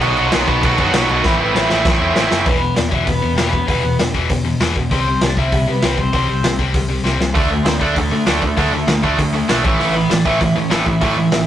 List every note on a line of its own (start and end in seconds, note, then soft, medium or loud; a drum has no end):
0.01 0.11 B1 loud
0.01 0.15 B2 medium
0.01 0.17 D#3 medium
0.01 0.16 F#3 loud
0.01 0.17 B3 loud
0.01 0.24 D#4 medium
0.01 0.16 F#4 loud
0.01 0.23 D#5 loud
0.01 crash medium
0.17 0.28 B1 medium
0.17 0.32 B2 medium
0.17 0.32 D#3 medium
0.17 0.31 F#3 loud
0.17 0.31 B3 loud
0.17 0.33 F#4 loud
0.17 crash medium
0.24 0.47 C4 medium
0.24 0.47 C5 medium
0.32 0.43 B1 loud
0.32 0.47 B2 medium
0.32 0.48 D#3 medium
0.32 0.48 F#3 loud
0.32 0.48 B3 loud
0.32 0.47 F#4 loud
0.32 snare loud
0.32 crash medium
0.47 0.58 B1 loud
0.47 0.63 B2 medium
0.47 0.63 D#3 medium
0.47 0.62 F#3 medium
0.47 0.62 B3 medium
0.47 0.61 B3 loud
0.47 0.65 F#4 loud
0.47 0.65 B4 medium
0.47 kick medium
0.47 crash medium
0.63 0.73 B1 medium
0.63 0.77 B2 medium
0.63 0.80 D#3 loud
0.63 0.78 F#3 loud
0.63 0.86 A3 medium
0.63 0.78 B3 loud
0.63 0.79 F#4 loud
0.63 0.87 A4 medium
0.63 kick loud
0.63 crash medium
0.78 0.88 F#2 medium
0.78 0.94 B2 medium
0.78 0.94 D#3 medium
0.78 0.93 F#3 medium
0.78 0.93 B3 medium
0.78 0.95 F#4 loud
0.78 kick medium
0.78 crash medium
0.88 1.10 G3 medium
0.88 1.10 G4 medium
0.93 1.03 B1 medium
0.93 1.09 B2 medium
0.93 1.09 D#3 medium
0.93 1.09 F#3 medium
0.93 1.10 B3 loud
0.93 1.09 F#4 loud
0.93 snare loud
0.93 crash medium
1.08 1.19 B1 medium
1.08 1.24 B2 medium
1.08 1.24 D#3 loud
1.08 1.24 F#3 medium
1.08 1.24 A3 medium
1.08 1.24 B3 loud
1.08 1.24 F#4 loud
1.08 1.23 A4 medium
1.08 crash medium
1.24 1.34 A1 medium
1.24 1.40 A2 medium
1.24 1.39 E3 loud
1.24 1.39 A3 loud
1.24 1.39 B3 medium
1.24 1.39 C4 loud
1.24 1.39 E4 loud
1.24 1.37 B4 medium
1.24 kick loud
1.24 snare medium
1.39 1.50 A1 medium
1.39 1.54 A2 medium
1.39 1.55 E3 loud
1.39 1.55 A3 loud
1.39 1.68 B3 medium
1.39 1.56 C4 loud
1.39 1.56 E4 medium
1.39 1.67 B4 medium
1.55 1.65 A1 loud
1.55 1.70 A2 medium
1.55 1.69 E3 loud
1.55 1.68 A3 loud
1.55 1.70 C4 medium
1.55 1.70 E4 loud
1.55 snare medium
1.70 1.81 A1 loud
1.70 1.85 A2 medium
1.70 1.85 E3 medium
1.70 1.86 A3 loud
1.70 1.86 C4 medium
1.70 2.13 E4 medium
1.70 1.87 E4 medium
1.70 2.14 E5 medium
1.70 snare medium
1.85 1.95 A1 medium
1.85 2.01 A2 medium
1.85 2.01 E3 loud
1.85 2.01 A3 loud
1.85 2.00 C4 loud
1.85 2.00 E4 loud
1.85 kick loud
1.85 snare medium
2.01 2.10 E2 medium
2.01 2.14 A2 medium
2.01 2.15 E3 loud
2.01 2.16 A3 loud
2.01 2.16 C4 medium
2.01 2.16 E4 loud
2.15 2.25 A1 loud
2.15 2.30 A2 medium
2.15 2.29 E3 loud
2.15 2.29 A3 loud
2.15 2.31 C4 medium
2.15 2.37 E4 medium
2.15 2.30 E4 medium
2.15 2.36 E5 medium
2.15 snare loud
2.30 2.41 F#1 medium
2.30 2.45 A2 medium
2.30 2.45 E3 medium
2.30 2.45 A3 loud
2.30 2.46 C4 loud
2.30 2.45 E4 loud
2.30 snare medium
2.46 2.68 E1 medium
2.46 2.60 E2 medium
2.46 2.60 B2 loud
2.46 2.61 E3 loud
2.46 2.54 B3 medium
2.46 2.54 B4 loud
2.46 kick loud
2.46 open hi-hat soft
2.55 2.76 B3 medium
2.55 2.75 B4 loud
2.61 2.75 E2 medium
2.61 2.75 B2 medium
2.76 2.88 E1 medium
2.76 2.90 E2 medium
2.76 2.91 B2 medium
2.76 2.92 D4 medium
2.76 2.89 D5 loud
2.76 snare loud
2.76 open hi-hat medium
2.89 3.03 E1 medium
2.89 3.05 E2 medium
2.89 3.05 B2 loud
2.89 3.06 E3 loud
2.89 3.07 E4 medium
2.89 3.06 E5 medium
2.89 kick medium
3.04 3.18 E1 medium
3.04 3.20 E2 medium
3.04 3.21 B2 medium
3.04 3.14 B3 medium
3.04 3.07 B4 medium
3.04 kick medium
3.04 open hi-hat medium
3.12 3.35 B3 medium
3.12 3.35 B4 medium
3.22 3.36 E2 medium
3.22 3.34 E2 medium
3.22 3.36 B2 medium
3.35 3.60 E1 medium
3.35 3.51 E2 medium
3.35 3.52 B2 medium
3.35 3.52 E3 loud
3.35 3.52 G3 medium
3.35 3.51 G4 medium
3.35 snare loud
3.35 open hi-hat medium
3.49 3.66 E2 medium
3.49 3.67 B3 medium
3.49 3.66 B4 medium
3.53 3.67 B2 medium
3.53 kick medium
3.67 3.79 E1 loud
3.67 3.82 E2 medium
3.67 3.82 B2 medium
3.67 3.83 E3 loud
3.67 3.97 B3 medium
3.67 3.96 B4 medium
3.67 kick loud
3.67 open hi-hat medium
3.83 3.95 E1 medium
3.83 3.97 E2 medium
3.83 3.97 B2 medium
3.98 4.09 E1 medium
3.98 4.13 E2 medium
3.98 4.13 B2 medium
3.98 snare loud
3.98 open hi-hat medium
4.14 4.25 E1 loud
4.14 4.29 E2 loud
4.14 4.29 B2 loud
4.14 4.29 E3 loud
4.14 kick medium
4.30 4.52 E1 medium
4.30 4.43 E2 medium
4.30 4.44 B2 medium
4.30 kick loud
4.30 open hi-hat medium
4.45 4.58 E2 medium
4.45 4.59 B2 medium
4.60 4.71 E1 medium
4.60 4.75 E2 medium
4.60 4.75 B2 medium
4.60 4.75 E3 loud
4.60 snare loud
4.60 open hi-hat medium
4.76 4.87 E1 medium
4.76 4.90 E2 medium
4.76 4.90 B2 medium
4.76 kick medium
4.91 5.13 C2 loud
4.91 5.05 C3 medium
4.91 5.06 G3 loud
4.91 4.98 C4 medium
4.91 5.06 C4 loud
4.91 4.99 C5 medium
4.91 kick medium
4.91 open hi-hat medium
5.00 5.21 C4 medium
5.00 5.21 C5 medium
5.08 5.21 C3 medium
5.08 5.21 G3 medium
5.21 5.32 C2 medium
5.21 5.36 C3 medium
5.21 5.36 G3 loud
5.21 5.37 D4 medium
5.21 5.36 D5 loud
5.21 snare loud
5.21 open hi-hat medium
5.37 5.48 C2 medium
5.37 5.51 C3 loud
5.37 5.52 G3 medium
5.37 5.52 C4 loud
5.37 5.67 E4 medium
5.37 5.69 E5 loud
5.37 kick medium
5.52 5.63 C2 loud
5.52 5.66 C3 medium
5.52 5.66 G3 loud
5.52 kick loud
5.52 open hi-hat medium
5.67 5.78 C3 medium
5.67 5.81 C3 medium
5.67 5.81 G3 medium
5.67 5.97 B3 medium
5.67 5.97 B4 medium
5.82 6.04 C2 medium
5.82 5.97 C3 medium
5.82 5.97 G3 medium
5.82 5.98 C4 loud
5.82 snare loud
5.82 open hi-hat medium
5.98 6.12 C3 medium
5.98 6.12 G3 medium
5.98 6.55 C4 medium
5.98 6.55 C5 medium
5.98 kick medium
6.13 6.24 C2 loud
6.13 6.27 C3 medium
6.13 6.27 G3 medium
6.13 6.28 C4 medium
6.13 kick medium
6.13 open hi-hat medium
6.28 6.40 C2 medium
6.28 6.42 C3 medium
6.28 6.42 G3 medium
6.43 6.55 C2 medium
6.43 6.57 C3 medium
6.43 6.57 G3 medium
6.43 snare loud
6.43 open hi-hat medium
6.59 6.70 C2 loud
6.59 6.73 C3 loud
6.59 6.73 G3 loud
6.59 6.74 C4 loud
6.59 kick medium
6.74 6.96 C2 medium
6.74 6.87 C3 medium
6.74 6.88 G3 medium
6.74 kick loud
6.74 open hi-hat medium
6.89 7.03 C3 medium
6.89 7.03 G3 medium
7.04 7.15 C2 medium
7.04 7.19 C3 loud
7.04 7.19 G3 loud
7.04 7.19 C4 medium
7.04 snare medium
7.19 7.30 C2 medium
7.19 7.34 C3 medium
7.19 7.34 G3 medium
7.19 snare medium
7.35 7.58 D2 medium
7.35 7.49 D3 medium
7.35 7.49 A3 medium
7.35 7.41 A3 medium
7.35 7.50 D4 loud
7.35 7.41 A4 medium
7.35 kick loud
7.35 open hi-hat medium
7.42 7.64 A3 medium
7.42 7.64 A4 medium
7.50 7.64 D3 medium
7.50 7.64 A3 medium
7.63 7.77 D2 medium
7.63 7.79 D3 medium
7.63 7.79 A3 loud
7.63 7.80 C4 medium
7.63 7.77 C5 loud
7.63 snare loud
7.63 open hi-hat medium
7.77 7.94 D3 medium
7.77 7.95 A3 loud
7.77 7.95 D4 medium
7.77 7.95 D4 loud
7.77 7.95 D5 loud
7.77 kick medium
7.81 7.92 D2 medium
7.92 8.10 D3 medium
7.92 8.03 A3 medium
7.92 8.10 A3 medium
7.92 8.00 A4 loud
7.96 8.07 D2 medium
7.96 kick loud
7.96 open hi-hat medium
8.01 8.25 A3 medium
8.01 8.24 A4 loud
8.11 8.25 D3 medium
8.11 8.23 D3 medium
8.11 8.25 A3 medium
8.26 8.49 D2 medium
8.26 8.41 D3 loud
8.26 8.42 F#3 medium
8.26 8.42 A3 loud
8.26 8.42 D4 loud
8.26 8.40 F#4 medium
8.26 snare loud
8.26 open hi-hat medium
8.40 8.56 D3 medium
8.40 8.56 A3 medium
8.40 8.55 A4 medium
8.40 kick medium
8.56 8.68 D2 loud
8.56 8.71 D3 loud
8.56 8.72 A3 loud
8.56 8.86 A3 medium
8.56 8.72 D4 loud
8.56 8.85 A4 medium
8.56 kick loud
8.56 open hi-hat medium
8.72 8.83 D2 medium
8.72 8.86 D3 medium
8.72 8.87 A3 medium
8.88 8.99 D2 loud
8.88 9.01 D3 medium
8.88 9.02 A3 loud
8.88 snare loud
8.88 open hi-hat medium
9.03 9.14 D2 loud
9.03 9.16 D3 loud
9.03 9.17 A3 loud
9.03 9.18 D4 loud
9.03 kick medium
9.17 9.40 D2 medium
9.17 9.32 D3 medium
9.17 9.32 A3 medium
9.17 kick medium
9.17 open hi-hat medium
9.33 9.47 D3 medium
9.33 9.47 A3 medium
9.48 9.61 B1 medium
9.48 9.63 D3 medium
9.48 9.63 A3 loud
9.48 9.63 D4 medium
9.48 snare loud
9.48 open hi-hat medium
9.64 9.75 A1 medium
9.64 9.77 A2 loud
9.64 9.78 E3 medium
9.64 9.78 A3 loud
9.64 kick loud
9.78 10.02 A1 loud
9.78 9.93 A2 medium
9.78 9.94 E3 loud
9.78 9.94 A3 loud
9.78 9.87 B3 medium
9.78 9.88 B4 medium
9.78 open hi-hat medium
9.88 10.09 B3 medium
9.88 10.12 B4 loud
9.95 10.09 A2 medium
9.95 10.09 E3 medium
10.10 10.21 A1 medium
10.10 10.24 A2 medium
10.10 10.24 E3 medium
10.10 10.25 D4 medium
10.10 10.25 D5 loud
10.10 snare loud
10.10 open hi-hat medium
10.25 10.37 A1 medium
10.25 10.39 A2 loud
10.25 10.39 E3 loud
10.25 10.40 A3 loud
10.25 10.39 E4 medium
10.25 10.39 E5 loud
10.25 kick medium
10.40 10.52 A1 medium
10.40 10.54 A2 medium
10.40 10.54 E3 medium
10.40 10.55 E4 medium
10.40 10.55 E5 medium
10.40 kick loud
10.40 open hi-hat medium
10.55 10.69 A2 medium
10.55 10.67 A2 medium
10.55 10.69 E3 medium
10.55 10.70 C#4 medium
10.55 10.71 C#5 loud
10.70 10.93 A1 medium
10.70 10.84 A2 medium
10.70 10.84 E3 loud
10.70 10.85 A3 loud
10.70 10.86 D4 medium
10.70 10.86 D5 medium
10.70 snare loud
10.70 open hi-hat medium
10.85 10.99 A2 medium
10.85 11.00 E3 medium
10.85 11.47 E4 medium
10.85 11.47 E5 medium
10.85 kick medium
11.01 11.12 A1 loud
11.01 11.15 A2 loud
11.01 11.15 E3 medium
11.01 11.16 A3 loud
11.01 kick loud
11.01 open hi-hat medium
11.16 11.28 A1 medium
11.16 11.30 A2 medium
11.16 11.30 E3 medium
11.32 11.43 A1 medium
11.32 11.45 A2 medium
11.32 11.46 E3 medium
11.32 snare loud
11.32 open hi-hat medium